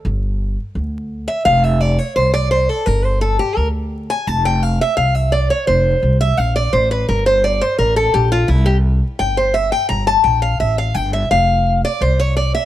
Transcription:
<<
  \new Staff \with { instrumentName = "Steel-string acoustic guitar" } { \time 4/4 \key g \dorian \tempo 4 = 170 r2. r8 e''8 | f''8 e''8 d''8 cis''8 c''8 d''8 c''8 a'8 | bes'8 c''8 a'8 g'8 bes'8 r4 aes''8 | a''8 g''8 f''8 e''8 f''8 e''8 d''8 cis''8 |
c''4. e''8 f''8 d''8 c''8 b'8 | bes'8 c''8 d''8 c''8 bes'8 a'8 g'8 f'8 | e'8 g'8 r4 g''8 c''8 e''8 g''8 | bes''8 a''8 g''8 f''8 e''8 f''8 g''8 e''8 |
f''4. d''8 c''8 cis''8 d''8 e''8 | }
  \new Staff \with { instrumentName = "Upright bass" } { \clef bass \time 4/4 \key g \dorian g,,2 d,2 | f,,2 c,2 | g,,2 d,2 | f,,2 c,2 |
f,,4 c,4 bes,,4 a,,4 | g,,2 a,,4 bes,,4 | c,2 g,,2 | g,,4 bes,,4 a,,4 g,,4 |
f,,2 c,2 | }
>>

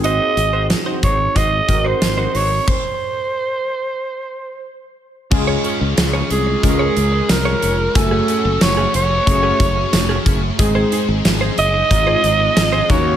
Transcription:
<<
  \new Staff \with { instrumentName = "Alto saxophone" } { \time 4/4 \key aes \mixolydian \tempo 4 = 91 ees''4 r8 des''8 ees''8. c''8. des''8 | c''2. r4 | r4. aes'8 aes'4 bes'4 | a'4 des''8 des''2 r8 |
r4. ees''2 des''8 | }
  \new Staff \with { instrumentName = "Clean electric guitar" } { \time 4/4 \key aes \mixolydian <ees' ges' c''>8 r16 <ees' ges' c''>16 r16 <ees' ges' c''>16 <ees' ges' c''>16 r16 <ees' ges' c''>16 r8 <ees' ges' c''>16 r16 <ees' ges' c''>16 <ees' ges' c''>16 r16 | r1 | r16 <f' aes' des''>16 <f' aes' des''>16 r8 <f' aes' des''>16 r8. <f' aes' des''>16 r8. <f' aes' des''>16 <f' aes' des''>16 r16 | r16 <a des' aes'>16 <a des' aes'>16 r8 <a des' aes'>16 r8. <a des' aes'>16 r8. <a des' aes'>16 <a des' aes'>16 r16 |
r16 <ees' aes' c''>16 <ees' aes' c''>16 r8 <ees' aes' c''>16 r8. <ees' aes' c''>16 r8. <ees' aes' c''>16 <des' ges' bes'>16 r16 | }
  \new Staff \with { instrumentName = "Synth keys" } { \time 4/4 \key aes \mixolydian <c' ees' ges' aes'>4 r4. <c' ees' ges' bes'>4 r8 | r1 | <aes des' f' aes'>4. r8 <aes des' f' bes'>4. r8 | <a des' ges' aes''>4. r8 <a des' ges' aes'>4. r8 |
<aes c' ees' aes'>4. r8 <aes c' ees' f'>4. <bes des' ees' ges'>8 | }
  \new Staff \with { instrumentName = "Distorted electric guitar" } { \time 4/4 \key aes \mixolydian r1 | r1 | <des aes des'>8 <aes des'>4. <aes des'>2 | <ges des' ges'>8 <des' ges'>4. <ges des' ges'>2 |
<aes ees' aes'>8 <ees' aes'>4. <aes ees' aes'>4. <ees bes ees'>8 | }
  \new Staff \with { instrumentName = "Fretless electric bass" } { \clef bass \time 4/4 \key aes \mixolydian aes,,8 aes,,8. r16 aes,,8 aes,,8 aes,,8 aes,,8 aes,,8 | r1 | des,8 r16 des,16 des,8 c,8 des,8 des,8 c,8 f,,8 | ges,,8 r16 ges,,16 ges,,8 f,,8 ges,,8 ges,,8 f,,8 ges,,8 |
aes,,8 r16 aes,,16 aes,,8 ges,,8 aes,,8 aes,,8 aes,,8 ees,8 | }
  \new DrumStaff \with { instrumentName = "Drums" } \drummode { \time 4/4 hh8 hh8 <hh sn>8 <hh bd>8 <hh bd>8 <hh bd>8 <hh sn>8 hho8 | <cymc bd>4 r4 r4 r4 | <cymc bd>8 hh8 <hh sn tamb>8 hh8 <hh bd>8 hh8 <hh sn tamb>8 hh8 | <hh bd>8 hh8 <hh sn tamb>8 hh8 <hh bd>8 <hh bd>8 <hh sn tamb>8 <hh bd>8 |
<hh bd>8 hh8 <hh sn tamb>8 hh8 <hh bd>8 hh8 <hh sn tamb>8 <hh bd>8 | }
>>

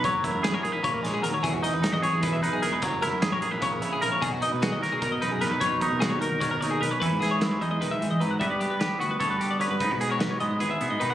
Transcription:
<<
  \new Staff \with { instrumentName = "Clean electric guitar" } { \time 7/8 \key b \major \tempo 4 = 151 cis''8 ais'8 gis'16 cis''16 ais'8 cis''16 ais'16 cis''16 gis'16 ais'16 cis''16 | gis'16 fis'16 dis''16 b'16 gis'16 dis''16 cis''16 gis'16 b'16 e''16 b'16 gis'16 ais'16 b'16 | cis''8 ais'8 gis'16 cis''16 ais'8 cis''16 ais'16 cis''16 gis'16 ais'16 cis''16 | gis'16 fis'16 dis''16 b'16 gis'16 dis''16 cis''16 gis'16 ais'16 dis''16 b'16 gis'16 ais'16 b'16 |
cis''8 ais'8 gis'16 cis''16 ais'8 cis''16 ais'16 cis''16 gis'16 ais'16 cis''16 | b'8 gis'16 cis''16 b'16 cis''16 dis''16 dis''16 b'16 e''8 dis''16 b'16 fis''16 | e''16 d''16 g'16 b'16 g'8 fis'16 b'16 cis''16 b'16 g'16 d''16 cis''16 b'16 | b'8 gis'16 cis''16 b'16 cis''16 dis''16 dis''16 b'16 e''8 dis''16 b'16 fis''16 | }
  \new Staff \with { instrumentName = "Clean electric guitar" } { \time 7/8 \key b \major << { r8 e'8 gis'16 ais'16 gis'16 b'4.~ b'16 | r8 dis'8 dis'16 fis'16 gis'4 dis'8 gis'8 | r8 e'8 gis'16 ais'16 gis'16 b'8. e'8 ais'8 | r8 dis'8 fis'8 ais'4 dis'8 b'8 |
r8 dis'8 fis'8 ais'4 dis'8 b'8 | e'8 gis'8 e'8 dis'2 | <b fis' b'>8 b'8 b'8 fis'8 a'8 fis'8 b'8 | dis'16 fis'16 gis'16 ais'16 fis'8 b8 gis'8 b8 dis'16 fis'16 | } \\ { fis2 ais8 gis8 fis8 | e2 b,4. | fis2 cis4. | b,2 b,4. |
b,2 b,4. | e4. gis8 dis8 e8 fis8 | g4. b4. d8 | gis,4. gis4. dis8 | } >> }
  \new Staff \with { instrumentName = "Fingered electric bass" } { \clef bass \time 7/8 \key b \major fis,,8. fis,8 ais,,8 ais,,8 r16 ais,,8 dis,16 r16 | e,,8 r16 e,8 gis,,16 r16 e,8. b,,8 e,,8 | fis,,8. fis,8 ais,,8 ais,,8 r16 ais,,8 ais,,16 r16 | b,,8 r16 b,8 dis,16 r16 b,8. fis,8 b,,8 |
b,,8. b,8 dis,8 dis,8 r16 dis,8 b,,16 r16 | e,16 gis,4~ gis,16 e,8 b,,16 r16 gis,16 e16 gis,8 | g,16 g,8 r8. d,8 d,16 g,4 g,16 | gis,16 b,4~ b,16 gis,8 dis,16 r16 b,16 gis,16 b,8 | }
  \new DrumStaff \with { instrumentName = "Drums" } \drummode { \time 7/8 <hh bd>8 <hh bd>8 <hh sn>8 hh8 <hh bd>8 <hh sn>8 hh8 | <hh bd>8 hh8 <hh sn>8 hh8 <hh bd sn>8 hh8 hh8 | <hh bd>8 <hh bd sn>8 <hh sn>8 hh8 <hh bd sn>8 hh8 hh8 | <hh bd>8 hh8 <hh sn>8 <hh sn>8 <hh bd>8 hh8 <hh sn>8 |
<hh bd>8 <hh bd>8 <hh sn>8 hh8 <hh bd sn>8 hh8 hh8 | <hh bd>8 <hh sn>8 <hh sn>8 hh8 hh8 hh8 hh8 | <hh bd>8 hh8 <hh sn>8 hh8 <hh bd>8 hh8 hh8 | <hh bd>8 hh8 <hh sn>8 hh8 hh8 hh8 hh8 | }
>>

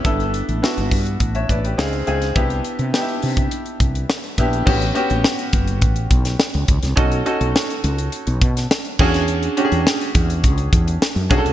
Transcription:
<<
  \new Staff \with { instrumentName = "Grand piano" } { \time 4/4 \key a \mixolydian \tempo 4 = 104 << { r2 r16 <cis'' e''>16 <b' d''>16 <g' b'>8 r8. | r1 | r1 | r1 |
r1 | } \\ { <b d' e' a'>8. r16 <b d' e' fis'>4. r8 <bis dis' eis' gis'>8 <bis dis' eis' gis'>8 | <b d' e' g'>8. r16 <b d' dis' e' g'>4. r4 <b d' e' g'>8 | <b cis' fis' g'>8 <b cis' fis' g'>4. r2 | <cis' dis' fis' a'>8 <cis' dis' fis' a'>4. r4. <cis' d' fis' gis'>8~ |
<cis' d' fis' gis'>8 <cis' d' fis' g' gis'>4. r4. <cis' d' fis' gis' a'>8 | } >> }
  \new Staff \with { instrumentName = "Fretless electric bass" } { \clef bass \time 4/4 \key a \mixolydian g,,8. a,,16 r16 g,,16 g,8 a,,8 a,,8 cis,8 cis,8 | c,8 r16 c16 r8 c8 r8 c,8 r8 ais,,8 | a,,8 r16 a,,16 r8 fis,,8 a,,8 b,,8 r16 cis,16 cis,16 c,16 | b,,8 r16 b,,16 r8 cis,8 r16 b,,16 b,8 r8 e,8~ |
e,8 r16 e,16 r8 e,8 cis,8 e,8 r16 fis,16 b,,16 c,16 | }
  \new DrumStaff \with { instrumentName = "Drums" } \drummode { \time 4/4 <hh bd>16 hh16 hh16 hh16 sn16 hh16 <hho bd>16 hh16 <hh bd>16 hh16 <hh bd>16 hh16 sn16 hh16 hh16 <hh sn>16 | <hh bd>16 hh16 hh16 hh16 sn16 hh16 hho16 <hh bd>16 hh16 hh16 <hh bd>16 hh16 sn16 hh16 <hh bd>16 hh16 | <cymc bd>16 hh16 hh16 hh16 sn16 hh16 <hh bd>16 hh16 <hh bd>16 hh16 <hh bd>16 <hh sn>16 sn16 hh16 <hh bd>16 <hh sn>16 | <hh bd>16 hh16 hh16 hh16 sn16 hh16 hh16 hh16 hh16 hh16 <hh bd>16 <hh sn>16 sn16 hh16 <cymc bd>16 <hh sn>16 |
hh16 hh16 hh16 hh16 sn16 hh16 <hh bd>16 hh16 <hh bd>16 hh16 <hh bd>16 hh16 sn16 hh16 <hh bd>16 hh16 | }
>>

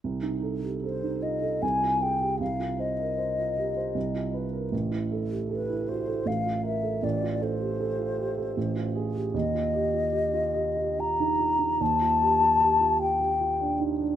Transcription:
<<
  \new Staff \with { instrumentName = "Flute" } { \time 3/4 \key c \minor \tempo 4 = 77 r4 c''8 ees''8 aes''8 g''8 | f''8 ees''2 r8 | r4 b'8 c''8 f''8 e''8 | d''8 c''2 r8 |
ees''2 bes''4 | a''4. g''4 r8 | }
  \new Staff \with { instrumentName = "Grand piano" } { \time 3/4 \key c \minor c,16 ees'16 a'16 g'16 a'16 ees'16 f'16 a'16 c,16 f'16 aes'16 g'16 | c,16 f'16 c''16 bes'16 c''16 f'16 g'16 c''16 c,16 f'16 b'16 bes'16 | a,,16 e'16 a'16 g'16 a'16 e'16 fis'16 a'16 a,,16 f'16 bes'16 a'16 | a,,16 f'16 a'16 g'16 a'16 f'16 g'16 a'16 a,,16 f'16 gis'16 g'16 |
ees,16 f'16 g'16 f'16 g'16 f'16 g'16 g'16 f'16 ees'16 f'16 ees'16 | ees,16 f'16 g'16 f'16 g'16 f'16 g'16 g'16 f'16 d'16 ees'16 d'16 | }
>>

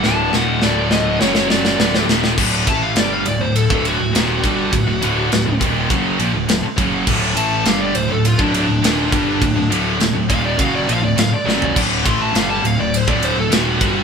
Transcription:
<<
  \new Staff \with { instrumentName = "Lead electric guitar" } { \time 4/4 \tempo 4 = 102 a''8 fis''8 d''8 ees''8 cis''8 d''4 r8 | r8 a''16 f''16 d''16 f''16 d''16 c''16 a'8 fis'4.~ | fis'4. r2 r8 | r8 a''8 f''16 d''16 c''16 a'16 f'16 d'16 d'4.~ |
d'8 r4 f''16 d''16 f''16 d''16 f''16 d''16 f''16 d''16 d''8 | r8 c'''16 a''16 f''16 a''16 f''16 d''16 c''16 d''16 c''16 a'16 fis'4 | }
  \new Staff \with { instrumentName = "Distorted electric guitar" } { \clef bass \time 4/4 <d, a, d>8 <ees, bes, ees>8 <d, a, d>4 <fis, cis fis>4 <d, a, d>8 <ees, bes, ees>8 | <d, a, d>8 <a, e a>8 <g, d g>8 <d, a,>16 <d, a,>8 <d, a, d>8 <d, a,>16 <ees, bes, ees>8 <g, d g>8 | <d, a,>16 <d, a,>16 <d, a, d>8 <d, a,>16 <d, a,>16 <ees, bes, ees>8 <fis, cis fis>8 <bes, f>16 <d, a,>16 <d, a,>16 r16 <fis, cis fis>8 | <d, a, d>8 <a, e a>8 <g, d g>8 <d, a,>16 <d, a,>8 <d, a, d>8 <d, a,>16 <ees, bes, ees>8 <g, d g>8 |
<d, a,>16 <d, a,>16 <d, a, d>8 <d, a,>16 <d, a,>16 <ees, bes, ees>8 <fis, cis fis>8 <bes, f>16 <d, a,>16 <d, a,>16 r16 <fis, cis fis>8 | <d, a, d>8 <a, e a>8 <g, d g>8 <d, a,>16 <d, a,>8 <d, a, d>8 <d, a,>16 <ees, bes, ees>8 <g, d g>8 | }
  \new Staff \with { instrumentName = "Distorted electric guitar" } { \clef bass \time 4/4 <d, a, d>8 <ees, bes, ees>8 <d, a, d>4 <fis, cis fis>4 <d, a, d>8 <ees, bes, ees>8 | <d, a, d>8 <a, e a>8 <g, d g>8 <d, a,>16 <d, a,>8 <d, a, d>8 <d, a,>16 <ees, bes, ees>8 <g, d g>8 | <d, a,>16 <d, a,>16 <d, a, d>8 <d, a,>16 <d, a,>16 <ees, bes, ees>8 <fis, cis fis>8 <bes, f>16 <d, a,>16 <d, a,>16 r16 <fis, cis fis>8 | <d, a, d>8 <a, e a>8 <g, d g>8 <d, a,>16 <d, a,>8 <d, a, d>8 <d, a,>16 <ees, bes, ees>8 <g, d g>8 |
<d, a,>16 <d, a,>16 <d, a, d>8 <d, a,>16 <d, a,>16 <ees, bes, ees>8 <fis, cis fis>8 <bes, f>16 <d, a,>16 <d, a,>16 r16 <fis, cis fis>8 | <d, a, d>8 <a, e a>8 <g, d g>8 <d, a,>16 <d, a,>8 <d, a, d>8 <d, a,>16 <ees, bes, ees>8 <g, d g>8 | }
  \new Staff \with { instrumentName = "Distorted electric guitar" } { \clef bass \time 4/4 <d, a, d>8 <ees, bes, ees>8 <d, a, d>4 <fis, cis fis>4 <d, a, d>8 <ees, bes, ees>8 | <d, a, d>8 <a, e a>8 <g, d g>8 <d, a,>16 <d, a,>8 <d, a, d>8 <d, a,>16 <ees, bes, ees>8 <g, d g>8 | <d, a,>16 <d, a,>16 <d, a, d>8 <d, a,>16 <d, a,>16 <ees, bes, ees>8 <fis, cis fis>8 <bes, f>16 <d, a,>16 <d, a,>16 r16 <fis, cis fis>8 | <d, a, d>8 <a, e a>8 <g, d g>8 <d, a,>16 <d, a,>8 <d, a, d>8 <d, a,>16 <ees, bes, ees>8 <g, d g>8 |
<d, a,>16 <d, a,>16 <d, a, d>8 <d, a,>16 <d, a,>16 <ees, bes, ees>8 <fis, cis fis>8 <bes, f>16 <d, a,>16 <d, a,>16 r16 <fis, cis fis>8 | <d, a, d>8 <a, e a>8 <g, d g>8 <d, a,>16 <d, a,>8 <d, a, d>8 <d, a,>16 <ees, bes, ees>8 <g, d g>8 | }
  \new Staff \with { instrumentName = "Picked electric bass" } { \clef bass \time 4/4 d,,8 ees,,8 d,,4 fis,,4 d,,8 ees,,8 | d,,8 a,,8 g,,8 d,,16 d,,8 d,,8 d,,16 ees,,8 g,,8 | d,,16 d,,16 d,,8 d,,16 d,,16 ees,,8 fis,,8 bes,,16 d,,16 d,,16 r16 fis,,8 | d,,8 a,,8 g,,8 d,,16 d,,8 d,,8 d,,16 ees,,8 g,,8 |
d,,16 d,,16 d,,8 d,,16 d,,16 ees,,8 fis,,8 bes,,16 d,,16 d,,16 r16 fis,,8 | d,,8 a,,8 g,,8 d,,16 d,,8 d,,8 d,,16 ees,,8 g,,8 | }
  \new DrumStaff \with { instrumentName = "Drums" } \drummode { \time 4/4 sn8 sn8 sn8 sn8 sn16 sn16 sn16 sn16 sn16 sn16 sn16 sn16 | <cymc bd>8 <bd cymr>8 <cymr sn>8 cymr8 cymr16 bd16 cymr8 <cymr sn>8 <bd cymr>8 | <bd cymr>8 cymr8 <cymr sn>8 <bd cymr>8 <bd cymr>8 cymr8 <cymr sn>8 <bd cymr>8 | <cymc bd>8 cymr8 <cymr sn>8 cymr8 cymr16 bd16 cymr8 <cymr sn>8 <bd cymr>8 |
<bd cymr>8 cymr8 <cymr sn>8 <bd cymr>8 <bd cymr>8 cymr8 <cymr sn>8 sn16 tomfh16 | <cymc bd cymr>8 <bd cymr>8 <cymr sn>8 cymr8 cymr16 bd16 cymr8 <cymr sn>8 <bd cymr>8 | }
>>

